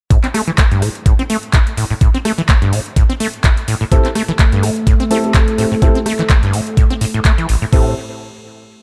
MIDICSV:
0, 0, Header, 1, 5, 480
1, 0, Start_track
1, 0, Key_signature, 0, "minor"
1, 0, Tempo, 476190
1, 108, Time_signature, 4, 2, 24, 8
1, 8896, End_track
2, 0, Start_track
2, 0, Title_t, "Grand piano"
2, 0, Program_c, 0, 0
2, 3948, Note_on_c, 0, 60, 92
2, 3948, Note_on_c, 0, 64, 82
2, 3948, Note_on_c, 0, 67, 85
2, 3948, Note_on_c, 0, 69, 101
2, 4087, Note_off_c, 0, 60, 0
2, 4087, Note_off_c, 0, 67, 0
2, 4087, Note_off_c, 0, 69, 0
2, 4088, Note_off_c, 0, 64, 0
2, 5147, Note_on_c, 0, 60, 90
2, 5147, Note_on_c, 0, 64, 83
2, 5147, Note_on_c, 0, 67, 81
2, 5147, Note_on_c, 0, 69, 100
2, 5260, Note_off_c, 0, 60, 0
2, 5260, Note_off_c, 0, 64, 0
2, 5260, Note_off_c, 0, 67, 0
2, 5260, Note_off_c, 0, 69, 0
2, 5280, Note_on_c, 0, 64, 75
2, 5280, Note_on_c, 0, 67, 75
2, 5280, Note_on_c, 0, 69, 91
2, 5281, Note_on_c, 0, 60, 80
2, 5396, Note_off_c, 0, 60, 0
2, 5396, Note_off_c, 0, 64, 0
2, 5396, Note_off_c, 0, 67, 0
2, 5396, Note_off_c, 0, 69, 0
2, 5626, Note_on_c, 0, 67, 62
2, 5627, Note_on_c, 0, 60, 70
2, 5627, Note_on_c, 0, 64, 65
2, 5627, Note_on_c, 0, 69, 75
2, 5767, Note_off_c, 0, 60, 0
2, 5767, Note_off_c, 0, 64, 0
2, 5767, Note_off_c, 0, 67, 0
2, 5767, Note_off_c, 0, 69, 0
2, 5866, Note_on_c, 0, 67, 85
2, 5867, Note_on_c, 0, 60, 94
2, 5867, Note_on_c, 0, 64, 88
2, 5867, Note_on_c, 0, 69, 103
2, 6007, Note_off_c, 0, 60, 0
2, 6007, Note_off_c, 0, 64, 0
2, 6007, Note_off_c, 0, 67, 0
2, 6007, Note_off_c, 0, 69, 0
2, 7788, Note_on_c, 0, 60, 79
2, 7788, Note_on_c, 0, 67, 75
2, 7788, Note_on_c, 0, 69, 90
2, 7789, Note_on_c, 0, 64, 73
2, 7971, Note_off_c, 0, 60, 0
2, 7971, Note_off_c, 0, 64, 0
2, 7971, Note_off_c, 0, 67, 0
2, 7971, Note_off_c, 0, 69, 0
2, 8896, End_track
3, 0, Start_track
3, 0, Title_t, "Ambient pad"
3, 0, Program_c, 1, 92
3, 3948, Note_on_c, 1, 57, 84
3, 3948, Note_on_c, 1, 69, 87
3, 7799, Note_off_c, 1, 57, 0
3, 7799, Note_off_c, 1, 69, 0
3, 8896, End_track
4, 0, Start_track
4, 0, Title_t, "Acid bass"
4, 0, Program_c, 2, 38
4, 106, Note_on_c, 2, 45, 81
4, 180, Note_off_c, 2, 45, 0
4, 238, Note_on_c, 2, 60, 99
4, 275, Note_off_c, 2, 60, 0
4, 346, Note_on_c, 2, 57, 95
4, 420, Note_off_c, 2, 57, 0
4, 479, Note_on_c, 2, 52, 90
4, 515, Note_off_c, 2, 52, 0
4, 588, Note_on_c, 2, 57, 76
4, 632, Note_off_c, 2, 57, 0
4, 720, Note_on_c, 2, 43, 97
4, 828, Note_on_c, 2, 45, 73
4, 843, Note_off_c, 2, 43, 0
4, 901, Note_off_c, 2, 45, 0
4, 1068, Note_on_c, 2, 45, 76
4, 1141, Note_off_c, 2, 45, 0
4, 1200, Note_on_c, 2, 60, 99
4, 1236, Note_off_c, 2, 60, 0
4, 1308, Note_on_c, 2, 57, 97
4, 1381, Note_off_c, 2, 57, 0
4, 1547, Note_on_c, 2, 45, 77
4, 1591, Note_off_c, 2, 45, 0
4, 1787, Note_on_c, 2, 45, 72
4, 1860, Note_off_c, 2, 45, 0
4, 1920, Note_on_c, 2, 45, 73
4, 1955, Note_off_c, 2, 45, 0
4, 2027, Note_on_c, 2, 45, 79
4, 2100, Note_off_c, 2, 45, 0
4, 2160, Note_on_c, 2, 60, 95
4, 2196, Note_off_c, 2, 60, 0
4, 2268, Note_on_c, 2, 57, 99
4, 2341, Note_off_c, 2, 57, 0
4, 2399, Note_on_c, 2, 52, 94
4, 2435, Note_off_c, 2, 52, 0
4, 2507, Note_on_c, 2, 57, 79
4, 2551, Note_off_c, 2, 57, 0
4, 2640, Note_on_c, 2, 43, 94
4, 2747, Note_on_c, 2, 45, 72
4, 2762, Note_off_c, 2, 43, 0
4, 2820, Note_off_c, 2, 45, 0
4, 2987, Note_on_c, 2, 45, 81
4, 3060, Note_off_c, 2, 45, 0
4, 3119, Note_on_c, 2, 60, 96
4, 3155, Note_off_c, 2, 60, 0
4, 3227, Note_on_c, 2, 57, 101
4, 3300, Note_off_c, 2, 57, 0
4, 3467, Note_on_c, 2, 45, 78
4, 3511, Note_off_c, 2, 45, 0
4, 3707, Note_on_c, 2, 45, 75
4, 3780, Note_off_c, 2, 45, 0
4, 3839, Note_on_c, 2, 45, 75
4, 3875, Note_off_c, 2, 45, 0
4, 3947, Note_on_c, 2, 45, 82
4, 4020, Note_off_c, 2, 45, 0
4, 4078, Note_on_c, 2, 60, 99
4, 4115, Note_off_c, 2, 60, 0
4, 4187, Note_on_c, 2, 57, 98
4, 4260, Note_off_c, 2, 57, 0
4, 4319, Note_on_c, 2, 52, 96
4, 4355, Note_off_c, 2, 52, 0
4, 4427, Note_on_c, 2, 57, 80
4, 4471, Note_off_c, 2, 57, 0
4, 4560, Note_on_c, 2, 43, 98
4, 4667, Note_on_c, 2, 45, 72
4, 4682, Note_off_c, 2, 43, 0
4, 4740, Note_off_c, 2, 45, 0
4, 4907, Note_on_c, 2, 45, 80
4, 4980, Note_off_c, 2, 45, 0
4, 5039, Note_on_c, 2, 60, 99
4, 5075, Note_off_c, 2, 60, 0
4, 5148, Note_on_c, 2, 57, 100
4, 5221, Note_off_c, 2, 57, 0
4, 5387, Note_on_c, 2, 45, 79
4, 5431, Note_off_c, 2, 45, 0
4, 5628, Note_on_c, 2, 45, 75
4, 5701, Note_off_c, 2, 45, 0
4, 5760, Note_on_c, 2, 45, 77
4, 5796, Note_off_c, 2, 45, 0
4, 5867, Note_on_c, 2, 45, 81
4, 5940, Note_off_c, 2, 45, 0
4, 6000, Note_on_c, 2, 60, 98
4, 6036, Note_off_c, 2, 60, 0
4, 6107, Note_on_c, 2, 57, 98
4, 6180, Note_off_c, 2, 57, 0
4, 6240, Note_on_c, 2, 52, 98
4, 6275, Note_off_c, 2, 52, 0
4, 6347, Note_on_c, 2, 57, 78
4, 6391, Note_off_c, 2, 57, 0
4, 6480, Note_on_c, 2, 43, 97
4, 6586, Note_on_c, 2, 45, 73
4, 6601, Note_off_c, 2, 43, 0
4, 6660, Note_off_c, 2, 45, 0
4, 6826, Note_on_c, 2, 45, 83
4, 6900, Note_off_c, 2, 45, 0
4, 6959, Note_on_c, 2, 60, 99
4, 6995, Note_off_c, 2, 60, 0
4, 7066, Note_on_c, 2, 45, 101
4, 7111, Note_off_c, 2, 45, 0
4, 7200, Note_on_c, 2, 45, 76
4, 7259, Note_off_c, 2, 45, 0
4, 7307, Note_on_c, 2, 57, 82
4, 7380, Note_off_c, 2, 57, 0
4, 7440, Note_on_c, 2, 52, 77
4, 7529, Note_off_c, 2, 52, 0
4, 7547, Note_on_c, 2, 33, 76
4, 7620, Note_off_c, 2, 33, 0
4, 7679, Note_on_c, 2, 45, 78
4, 7715, Note_off_c, 2, 45, 0
4, 7786, Note_on_c, 2, 45, 95
4, 8010, Note_off_c, 2, 45, 0
4, 8896, End_track
5, 0, Start_track
5, 0, Title_t, "Drums"
5, 107, Note_on_c, 9, 36, 100
5, 108, Note_on_c, 9, 42, 83
5, 207, Note_off_c, 9, 36, 0
5, 209, Note_off_c, 9, 42, 0
5, 239, Note_on_c, 9, 39, 34
5, 241, Note_on_c, 9, 42, 36
5, 339, Note_off_c, 9, 39, 0
5, 341, Note_off_c, 9, 42, 0
5, 348, Note_on_c, 9, 37, 66
5, 348, Note_on_c, 9, 46, 93
5, 449, Note_off_c, 9, 37, 0
5, 449, Note_off_c, 9, 46, 0
5, 586, Note_on_c, 9, 39, 113
5, 587, Note_on_c, 9, 36, 106
5, 588, Note_on_c, 9, 42, 86
5, 687, Note_off_c, 9, 39, 0
5, 688, Note_off_c, 9, 36, 0
5, 689, Note_off_c, 9, 42, 0
5, 721, Note_on_c, 9, 42, 35
5, 822, Note_off_c, 9, 42, 0
5, 828, Note_on_c, 9, 37, 56
5, 828, Note_on_c, 9, 46, 95
5, 929, Note_off_c, 9, 37, 0
5, 929, Note_off_c, 9, 46, 0
5, 961, Note_on_c, 9, 42, 38
5, 1062, Note_off_c, 9, 42, 0
5, 1067, Note_on_c, 9, 36, 109
5, 1068, Note_on_c, 9, 42, 88
5, 1168, Note_off_c, 9, 36, 0
5, 1169, Note_off_c, 9, 42, 0
5, 1201, Note_on_c, 9, 42, 38
5, 1302, Note_off_c, 9, 42, 0
5, 1308, Note_on_c, 9, 46, 99
5, 1408, Note_off_c, 9, 46, 0
5, 1441, Note_on_c, 9, 42, 38
5, 1542, Note_off_c, 9, 42, 0
5, 1546, Note_on_c, 9, 39, 113
5, 1547, Note_on_c, 9, 36, 109
5, 1548, Note_on_c, 9, 42, 87
5, 1647, Note_off_c, 9, 39, 0
5, 1648, Note_off_c, 9, 36, 0
5, 1649, Note_off_c, 9, 42, 0
5, 1682, Note_on_c, 9, 42, 38
5, 1783, Note_off_c, 9, 42, 0
5, 1789, Note_on_c, 9, 46, 92
5, 1890, Note_off_c, 9, 46, 0
5, 2027, Note_on_c, 9, 36, 110
5, 2029, Note_on_c, 9, 42, 85
5, 2128, Note_off_c, 9, 36, 0
5, 2130, Note_off_c, 9, 42, 0
5, 2162, Note_on_c, 9, 42, 35
5, 2263, Note_off_c, 9, 42, 0
5, 2269, Note_on_c, 9, 37, 69
5, 2269, Note_on_c, 9, 46, 99
5, 2370, Note_off_c, 9, 37, 0
5, 2370, Note_off_c, 9, 46, 0
5, 2403, Note_on_c, 9, 42, 37
5, 2504, Note_off_c, 9, 42, 0
5, 2507, Note_on_c, 9, 39, 115
5, 2508, Note_on_c, 9, 36, 112
5, 2509, Note_on_c, 9, 42, 85
5, 2608, Note_off_c, 9, 36, 0
5, 2608, Note_off_c, 9, 39, 0
5, 2610, Note_off_c, 9, 42, 0
5, 2641, Note_on_c, 9, 42, 36
5, 2742, Note_off_c, 9, 42, 0
5, 2749, Note_on_c, 9, 46, 99
5, 2850, Note_off_c, 9, 46, 0
5, 2882, Note_on_c, 9, 42, 36
5, 2983, Note_off_c, 9, 42, 0
5, 2988, Note_on_c, 9, 36, 116
5, 2989, Note_on_c, 9, 42, 88
5, 3088, Note_off_c, 9, 36, 0
5, 3089, Note_off_c, 9, 42, 0
5, 3122, Note_on_c, 9, 42, 37
5, 3223, Note_off_c, 9, 42, 0
5, 3229, Note_on_c, 9, 46, 104
5, 3329, Note_off_c, 9, 46, 0
5, 3362, Note_on_c, 9, 42, 37
5, 3463, Note_off_c, 9, 42, 0
5, 3467, Note_on_c, 9, 36, 113
5, 3467, Note_on_c, 9, 39, 114
5, 3469, Note_on_c, 9, 42, 87
5, 3568, Note_off_c, 9, 36, 0
5, 3568, Note_off_c, 9, 39, 0
5, 3570, Note_off_c, 9, 42, 0
5, 3602, Note_on_c, 9, 42, 38
5, 3703, Note_off_c, 9, 42, 0
5, 3708, Note_on_c, 9, 46, 105
5, 3809, Note_off_c, 9, 46, 0
5, 3947, Note_on_c, 9, 36, 114
5, 3948, Note_on_c, 9, 42, 83
5, 4048, Note_off_c, 9, 36, 0
5, 4049, Note_off_c, 9, 42, 0
5, 4078, Note_on_c, 9, 39, 35
5, 4080, Note_on_c, 9, 42, 37
5, 4179, Note_off_c, 9, 39, 0
5, 4181, Note_off_c, 9, 42, 0
5, 4187, Note_on_c, 9, 37, 70
5, 4187, Note_on_c, 9, 46, 100
5, 4288, Note_off_c, 9, 37, 0
5, 4288, Note_off_c, 9, 46, 0
5, 4320, Note_on_c, 9, 42, 36
5, 4421, Note_off_c, 9, 42, 0
5, 4426, Note_on_c, 9, 39, 113
5, 4427, Note_on_c, 9, 36, 119
5, 4428, Note_on_c, 9, 42, 84
5, 4527, Note_off_c, 9, 39, 0
5, 4528, Note_off_c, 9, 36, 0
5, 4528, Note_off_c, 9, 42, 0
5, 4560, Note_on_c, 9, 42, 34
5, 4661, Note_off_c, 9, 42, 0
5, 4668, Note_on_c, 9, 37, 61
5, 4668, Note_on_c, 9, 46, 104
5, 4769, Note_off_c, 9, 37, 0
5, 4769, Note_off_c, 9, 46, 0
5, 4801, Note_on_c, 9, 42, 37
5, 4902, Note_off_c, 9, 42, 0
5, 4907, Note_on_c, 9, 36, 118
5, 4908, Note_on_c, 9, 42, 86
5, 5008, Note_off_c, 9, 36, 0
5, 5009, Note_off_c, 9, 42, 0
5, 5041, Note_on_c, 9, 42, 36
5, 5142, Note_off_c, 9, 42, 0
5, 5148, Note_on_c, 9, 46, 108
5, 5249, Note_off_c, 9, 46, 0
5, 5281, Note_on_c, 9, 42, 36
5, 5382, Note_off_c, 9, 42, 0
5, 5386, Note_on_c, 9, 39, 113
5, 5387, Note_on_c, 9, 36, 119
5, 5388, Note_on_c, 9, 42, 86
5, 5487, Note_off_c, 9, 39, 0
5, 5488, Note_off_c, 9, 36, 0
5, 5489, Note_off_c, 9, 42, 0
5, 5521, Note_on_c, 9, 42, 37
5, 5622, Note_off_c, 9, 42, 0
5, 5628, Note_on_c, 9, 46, 103
5, 5729, Note_off_c, 9, 46, 0
5, 5867, Note_on_c, 9, 36, 115
5, 5868, Note_on_c, 9, 42, 82
5, 5968, Note_off_c, 9, 36, 0
5, 5969, Note_off_c, 9, 42, 0
5, 6001, Note_on_c, 9, 42, 36
5, 6102, Note_off_c, 9, 42, 0
5, 6108, Note_on_c, 9, 37, 75
5, 6108, Note_on_c, 9, 46, 104
5, 6208, Note_off_c, 9, 37, 0
5, 6208, Note_off_c, 9, 46, 0
5, 6238, Note_on_c, 9, 39, 35
5, 6240, Note_on_c, 9, 42, 36
5, 6339, Note_off_c, 9, 39, 0
5, 6341, Note_off_c, 9, 42, 0
5, 6346, Note_on_c, 9, 39, 114
5, 6347, Note_on_c, 9, 36, 114
5, 6348, Note_on_c, 9, 42, 85
5, 6447, Note_off_c, 9, 39, 0
5, 6448, Note_off_c, 9, 36, 0
5, 6449, Note_off_c, 9, 42, 0
5, 6480, Note_on_c, 9, 42, 35
5, 6581, Note_off_c, 9, 42, 0
5, 6587, Note_on_c, 9, 46, 105
5, 6688, Note_off_c, 9, 46, 0
5, 6721, Note_on_c, 9, 42, 37
5, 6822, Note_off_c, 9, 42, 0
5, 6827, Note_on_c, 9, 36, 118
5, 6828, Note_on_c, 9, 42, 85
5, 6928, Note_off_c, 9, 36, 0
5, 6929, Note_off_c, 9, 42, 0
5, 6960, Note_on_c, 9, 42, 35
5, 7061, Note_off_c, 9, 42, 0
5, 7068, Note_on_c, 9, 46, 106
5, 7169, Note_off_c, 9, 46, 0
5, 7202, Note_on_c, 9, 42, 37
5, 7302, Note_off_c, 9, 42, 0
5, 7307, Note_on_c, 9, 36, 114
5, 7307, Note_on_c, 9, 39, 114
5, 7309, Note_on_c, 9, 42, 83
5, 7408, Note_off_c, 9, 36, 0
5, 7408, Note_off_c, 9, 39, 0
5, 7409, Note_off_c, 9, 42, 0
5, 7442, Note_on_c, 9, 42, 35
5, 7543, Note_off_c, 9, 42, 0
5, 7549, Note_on_c, 9, 46, 103
5, 7649, Note_off_c, 9, 46, 0
5, 7788, Note_on_c, 9, 36, 105
5, 7788, Note_on_c, 9, 49, 81
5, 7889, Note_off_c, 9, 36, 0
5, 7889, Note_off_c, 9, 49, 0
5, 8896, End_track
0, 0, End_of_file